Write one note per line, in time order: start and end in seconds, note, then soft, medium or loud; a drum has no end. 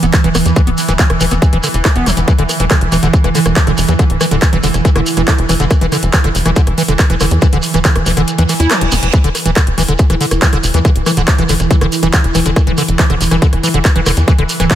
0.00 0.10 E1 medium
0.00 9.12 E3 medium
0.00 0.06 B3 medium
0.00 closed hi-hat medium
0.00 shekere soft
0.13 kick loud
0.13 cross-stick soft
0.13 clap loud
0.13 closed hi-hat medium
0.13 shekere medium
0.24 0.31 E1 medium
0.24 0.29 E3 loud
0.24 closed hi-hat medium
0.35 0.42 E1 loud
0.35 0.38 B3 medium
0.35 cross-stick medium
0.35 open hi-hat loud
0.35 shekere loud
0.46 0.53 E2 medium
0.46 closed hi-hat medium
0.46 shekere soft
0.56 0.61 E3 loud
0.56 kick loud
0.56 cross-stick soft
0.56 closed hi-hat medium
0.56 shekere medium
0.67 0.74 D1 medium
0.67 0.70 B3 medium
0.67 closed hi-hat medium
0.78 open hi-hat loud
0.78 shekere medium
0.88 0.96 D1 medium
0.88 0.93 E3 loud
0.88 cross-stick soft
0.88 closed hi-hat medium
0.88 shekere soft
0.99 1.02 B3 medium
0.99 kick loud
0.99 clap loud
0.99 closed hi-hat medium
0.99 shekere medium
1.10 1.17 E1 medium
1.10 cross-stick medium
1.10 closed hi-hat medium
1.20 1.28 E1 medium
1.20 1.26 E3 loud
1.20 open hi-hat medium
1.20 shekere loud
1.31 1.39 E1 medium
1.31 1.34 B3 medium
1.31 cross-stick soft
1.31 closed hi-hat medium
1.31 shekere soft
1.42 kick loud
1.42 closed hi-hat medium
1.42 shekere medium
1.53 1.60 E1 medium
1.53 1.58 E3 loud
1.53 closed hi-hat medium
1.63 1.68 D3 medium
1.63 cross-stick soft
1.63 open hi-hat loud
1.63 shekere loud
1.74 1.82 E1 medium
1.74 closed hi-hat medium
1.74 shekere soft
1.85 1.88 E4 loud
1.85 kick loud
1.85 cross-stick medium
1.85 clap loud
1.85 closed hi-hat medium
1.85 shekere medium
1.96 2.03 E1 medium
1.96 2.08 B3 medium
1.96 closed hi-hat medium
2.06 2.14 E1 medium
2.06 2.11 E3 medium
2.06 cross-stick soft
2.06 open hi-hat loud
2.06 shekere loud
2.17 2.24 E1 medium
2.17 2.20 E3 medium
2.17 closed hi-hat medium
2.17 shekere soft
2.28 2.33 E3 loud
2.28 kick loud
2.28 closed hi-hat medium
2.28 shekere medium
2.38 2.46 E1 medium
2.38 2.43 D3 loud
2.38 closed hi-hat medium
2.49 cross-stick soft
2.49 open hi-hat loud
2.49 shekere loud
2.59 2.67 E1 medium
2.59 2.65 E3 loud
2.59 closed hi-hat medium
2.59 shekere soft
2.70 2.76 D3 loud
2.70 kick loud
2.70 cross-stick medium
2.70 clap loud
2.70 closed hi-hat medium
2.70 shekere soft
2.81 2.89 E1 medium
2.81 closed hi-hat medium
2.92 2.99 E1 medium
2.92 2.97 E3 loud
2.92 cross-stick soft
2.92 open hi-hat medium
2.92 shekere medium
3.03 3.10 E1 medium
3.03 3.08 D3 loud
3.03 closed hi-hat medium
3.03 shekere soft
3.13 kick loud
3.13 closed hi-hat medium
3.13 shekere soft
3.24 3.32 E1 medium
3.24 3.29 E3 loud
3.24 cross-stick soft
3.24 closed hi-hat medium
3.35 3.40 D3 loud
3.35 open hi-hat loud
3.35 shekere medium
3.46 3.53 E1 medium
3.46 cross-stick medium
3.46 closed hi-hat medium
3.46 shekere soft
3.56 3.61 E3 loud
3.56 kick loud
3.56 clap loud
3.56 closed hi-hat medium
3.56 shekere medium
3.67 3.74 E1 medium
3.67 3.72 D3 loud
3.67 cross-stick soft
3.67 closed hi-hat medium
3.77 3.85 E1 loud
3.77 open hi-hat medium
3.77 shekere loud
3.88 3.96 E2 medium
3.88 3.93 E3 loud
3.88 closed hi-hat medium
3.88 shekere soft
3.99 4.04 D3 loud
3.99 kick loud
3.99 cross-stick soft
3.99 closed hi-hat medium
3.99 shekere soft
4.10 4.17 D1 medium
4.10 closed hi-hat medium
4.21 4.26 E3 loud
4.21 cross-stick medium
4.21 open hi-hat loud
4.21 shekere loud
4.31 4.39 D1 medium
4.31 4.36 D3 loud
4.31 closed hi-hat medium
4.31 shekere soft
4.42 kick loud
4.42 cross-stick soft
4.42 clap loud
4.42 closed hi-hat medium
4.42 shekere soft
4.53 4.60 E1 medium
4.53 4.58 E3 loud
4.53 closed hi-hat medium
4.63 4.71 E1 medium
4.63 4.68 D3 loud
4.63 open hi-hat medium
4.63 shekere medium
4.74 4.82 E1 medium
4.74 cross-stick soft
4.74 closed hi-hat medium
4.74 shekere soft
4.85 4.90 E3 loud
4.85 kick loud
4.85 closed hi-hat medium
4.85 shekere medium
4.96 5.03 E1 medium
4.96 5.01 D3 loud
4.96 cross-stick medium
4.96 closed hi-hat medium
5.06 open hi-hat loud
5.06 shekere loud
5.16 5.24 E1 medium
5.16 5.22 E3 loud
5.16 cross-stick soft
5.16 closed hi-hat medium
5.16 shekere soft
5.27 5.33 D3 loud
5.27 kick loud
5.27 clap loud
5.27 closed hi-hat medium
5.27 shekere soft
5.38 5.46 E1 medium
5.38 closed hi-hat medium
5.49 5.57 E1 loud
5.49 5.54 E3 loud
5.49 cross-stick soft
5.49 open hi-hat medium
5.49 shekere loud
5.60 5.67 E1 medium
5.60 5.65 D3 loud
5.60 closed hi-hat medium
5.60 shekere soft
5.70 kick loud
5.70 cross-stick medium
5.70 closed hi-hat medium
5.70 shekere soft
5.81 5.89 E1 medium
5.81 5.86 E3 loud
5.81 closed hi-hat medium
5.92 5.97 D3 loud
5.92 cross-stick soft
5.92 open hi-hat loud
5.92 shekere medium
6.03 6.10 E1 medium
6.03 closed hi-hat medium
6.03 shekere soft
6.13 6.18 E3 loud
6.13 kick loud
6.13 clap loud
6.13 closed hi-hat medium
6.13 shekere soft
6.24 6.31 E1 medium
6.24 6.29 D3 loud
6.24 cross-stick soft
6.24 closed hi-hat medium
6.35 6.42 E1 medium
6.35 open hi-hat medium
6.35 shekere medium
6.45 6.53 E1 medium
6.45 6.51 E3 loud
6.45 cross-stick medium
6.45 closed hi-hat medium
6.45 shekere soft
6.56 6.61 D3 loud
6.56 kick loud
6.56 closed hi-hat medium
6.56 shekere soft
6.67 6.74 E1 medium
6.67 cross-stick soft
6.67 closed hi-hat medium
6.78 6.83 E3 loud
6.78 open hi-hat loud
6.78 shekere medium
6.88 6.96 E1 medium
6.88 6.93 D3 loud
6.88 closed hi-hat medium
6.88 shekere soft
6.99 kick loud
6.99 cross-stick soft
6.99 clap loud
6.99 closed hi-hat medium
6.99 shekere soft
7.10 7.17 E1 medium
7.10 7.15 E3 loud
7.10 closed hi-hat medium
7.20 7.28 E1 loud
7.20 7.26 D3 loud
7.20 cross-stick medium
7.20 open hi-hat medium
7.20 shekere loud
7.31 7.39 E2 medium
7.31 closed hi-hat medium
7.31 shekere soft
7.42 7.47 E3 loud
7.42 kick loud
7.42 cross-stick soft
7.42 closed hi-hat medium
7.42 shekere medium
7.52 7.60 D1 medium
7.52 7.58 D3 loud
7.52 closed hi-hat medium
7.52 shekere soft
7.62 open hi-hat loud
7.62 shekere medium
7.74 7.81 D1 medium
7.74 7.79 E3 loud
7.74 cross-stick soft
7.74 closed hi-hat medium
7.74 shekere soft
7.85 7.90 D3 medium
7.85 kick loud
7.85 clap loud
7.85 closed hi-hat medium
7.85 shekere medium
7.96 8.03 E1 medium
7.96 cross-stick medium
7.96 closed hi-hat medium
8.06 8.14 E1 loud
8.06 8.11 E3 loud
8.06 open hi-hat medium
8.06 shekere medium
8.17 8.24 E1 medium
8.17 8.22 D3 loud
8.17 cross-stick soft
8.17 closed hi-hat medium
8.17 shekere soft
8.28 closed hi-hat medium
8.28 reverse cymbal medium
8.28 shekere medium
8.38 8.46 E2 medium
8.38 8.43 E3 loud
8.38 closed hi-hat medium
8.38 shekere soft
8.49 8.54 E3 medium
8.49 cross-stick soft
8.49 open hi-hat loud
8.49 shekere medium
8.60 8.67 E2 medium
8.60 8.72 E4 loud
8.60 closed hi-hat medium
8.60 shekere soft
8.71 8.83 E3 medium
8.71 cross-stick medium
8.71 clap loud
8.71 closed hi-hat medium
8.71 shekere soft
8.81 8.89 E1 medium
8.81 8.86 G3 medium
8.81 closed hi-hat medium
8.91 8.99 E1 medium
8.91 8.95 B3 medium
8.91 cross-stick soft
8.91 open hi-hat medium
8.91 shekere medium
9.02 9.10 E1 medium
9.02 9.08 E3 medium
9.02 closed hi-hat medium
9.02 shekere soft
9.13 9.18 E3 loud
9.13 14.75 E3 medium
9.13 kick loud
9.13 closed hi-hat medium
9.13 shekere medium
9.24 9.31 E1 medium
9.24 9.29 D3 loud
9.24 closed hi-hat medium
9.35 cross-stick soft
9.35 open hi-hat loud
9.35 shekere medium
9.45 9.53 E1 medium
9.45 9.51 E3 loud
9.45 closed hi-hat medium
9.45 shekere soft
9.56 9.61 D3 medium
9.56 kick loud
9.56 cross-stick medium
9.56 clap loud
9.56 closed hi-hat medium
9.56 shekere medium
9.67 9.74 E1 medium
9.67 closed hi-hat medium
9.78 9.85 E1 medium
9.78 9.83 E3 loud
9.78 cross-stick soft
9.78 open hi-hat loud
9.78 shekere medium
9.88 9.96 E1 medium
9.88 9.93 D3 loud
9.88 closed hi-hat medium
9.88 shekere soft
9.98 kick loud
9.98 closed hi-hat medium
9.98 shekere medium
10.10 10.17 E1 medium
10.10 10.15 E3 loud
10.10 cross-stick soft
10.10 closed hi-hat medium
10.21 10.26 D3 loud
10.21 open hi-hat loud
10.21 shekere medium
10.31 10.39 E1 medium
10.31 cross-stick medium
10.31 closed hi-hat medium
10.31 shekere soft
10.42 10.47 E3 loud
10.42 kick loud
10.42 clap loud
10.42 closed hi-hat medium
10.42 shekere medium
10.53 10.60 E1 medium
10.53 10.58 D3 medium
10.53 cross-stick soft
10.53 closed hi-hat medium
10.63 10.71 E1 medium
10.63 open hi-hat medium
10.63 shekere loud
10.74 10.81 E2 medium
10.74 10.79 E3 loud
10.74 closed hi-hat medium
10.74 shekere soft
10.85 10.90 D3 loud
10.85 kick loud
10.85 cross-stick soft
10.85 closed hi-hat medium
10.85 shekere medium
10.96 11.03 D1 medium
10.96 closed hi-hat medium
11.06 11.11 E3 loud
11.06 cross-stick medium
11.06 open hi-hat loud
11.06 shekere loud
11.17 11.24 D1 medium
11.17 11.22 D3 loud
11.17 closed hi-hat medium
11.17 shekere soft
11.27 kick loud
11.27 cross-stick soft
11.27 clap loud
11.27 closed hi-hat medium
11.27 shekere medium
11.38 11.46 E1 medium
11.38 11.43 E3 loud
11.38 closed hi-hat medium
11.49 11.57 E1 medium
11.49 11.54 D3 loud
11.49 open hi-hat loud
11.49 shekere loud
11.60 11.67 E1 medium
11.60 cross-stick soft
11.60 closed hi-hat medium
11.60 shekere soft
11.71 11.76 E3 loud
11.71 kick loud
11.71 closed hi-hat medium
11.71 shekere medium
11.81 11.89 E1 medium
11.81 11.86 D3 loud
11.81 cross-stick medium
11.81 closed hi-hat medium
11.92 open hi-hat loud
11.92 shekere medium
12.03 12.10 E1 medium
12.03 12.08 E3 loud
12.03 cross-stick soft
12.03 closed hi-hat medium
12.03 shekere soft
12.13 12.18 D3 loud
12.13 kick loud
12.13 clap loud
12.13 closed hi-hat medium
12.13 shekere medium
12.24 12.32 E1 medium
12.24 closed hi-hat medium
12.35 12.42 E1 loud
12.35 12.40 E3 loud
12.35 cross-stick soft
12.35 open hi-hat medium
12.35 shekere loud
12.45 12.53 E1 medium
12.45 12.51 D3 loud
12.45 closed hi-hat medium
12.45 shekere soft
12.56 kick loud
12.56 cross-stick medium
12.56 closed hi-hat medium
12.56 shekere medium
12.67 12.74 E1 medium
12.67 12.72 E3 loud
12.67 closed hi-hat medium
12.78 12.83 D3 loud
12.78 cross-stick soft
12.78 open hi-hat loud
12.78 shekere loud
12.88 12.96 E1 medium
12.88 closed hi-hat medium
12.88 shekere soft
12.99 13.04 E3 loud
12.99 kick loud
12.99 clap loud
12.99 closed hi-hat medium
12.99 shekere medium
13.10 13.17 E1 medium
13.10 13.15 D3 loud
13.10 cross-stick soft
13.10 closed hi-hat medium
13.21 13.28 E1 loud
13.21 open hi-hat loud
13.21 shekere loud
13.31 13.39 E1 medium
13.31 13.36 E3 loud
13.31 cross-stick medium
13.31 closed hi-hat medium
13.31 shekere soft
13.42 13.47 D3 loud
13.42 kick loud
13.42 closed hi-hat medium
13.42 shekere medium
13.53 13.60 E1 medium
13.53 cross-stick soft
13.53 closed hi-hat medium
13.63 13.68 E3 loud
13.63 open hi-hat loud
13.63 shekere loud
13.74 13.81 E1 medium
13.74 13.79 D3 loud
13.74 closed hi-hat medium
13.74 shekere soft
13.85 kick loud
13.85 cross-stick soft
13.85 clap loud
13.85 closed hi-hat medium
13.85 shekere medium
13.96 14.03 E1 medium
13.96 14.01 E3 loud
13.96 closed hi-hat medium
14.06 14.14 E1 medium
14.06 14.11 D3 loud
14.06 cross-stick medium
14.06 open hi-hat medium
14.06 shekere loud
14.17 14.24 E2 medium
14.17 closed hi-hat medium
14.17 shekere soft
14.28 14.33 E3 loud
14.28 kick loud
14.28 cross-stick soft
14.28 closed hi-hat medium
14.28 shekere soft
14.38 14.46 D1 medium
14.38 14.43 D3 loud
14.38 closed hi-hat medium
14.49 open hi-hat loud
14.49 shekere medium
14.60 14.67 D1 medium
14.60 14.65 E3 loud
14.60 cross-stick soft
14.60 closed hi-hat medium
14.60 shekere soft
14.71 14.75 D3 loud
14.71 kick loud
14.71 clap loud
14.71 closed hi-hat medium
14.71 shekere medium